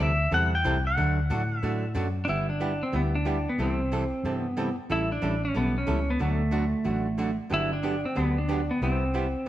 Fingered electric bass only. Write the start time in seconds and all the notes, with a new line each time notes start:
0.00 D2
0.31 E2
0.65 C2
0.98 D2
1.30 A2
1.63 A2
1.95 F#2
2.28 G1
2.93 D2
3.58 C2
4.24 G2
4.90 A1
5.22 A1
5.55 B1
5.88 C#2
6.21 D2
6.85 A1
7.51 G1
8.17 D2
8.81 C2